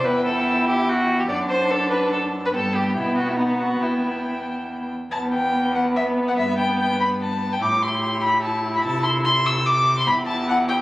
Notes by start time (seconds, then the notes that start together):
0.05 E2 E4 B4 G5
0.26 A4
0.68 G4
0.89 F#4
1.19 G4
1.29 F#2 D4 D5 A5
1.49 C5
1.71 A4
1.91 B4
2.13 A4
2.45 B4
2.54 G2 B3 A4 G5
2.75 G4
2.96 B2 E4
3.17 F#4
3.28 E4
3.37 D#4 F#5
3.60 F#4
3.81 E2 E4 G5
5.11 E2 B3 B4 A5
5.33 G5
5.75 F#5
5.96 E5
6.28 F#5
6.37 G2 E5
6.58 G5
6.79 G5
7.00 B5
7.21 A5
7.53 G5
7.61 A2 E4 G4 D6
7.82 C6
8.23 B5
8.43 A5
8.76 B5
8.84 C3 A4 A5
9.04 C6
9.25 C6
9.46 E6
9.66 D6
9.98 C6
10.07 E2 E4 G4 B5
10.26 A5
10.49 F#5
10.69 G5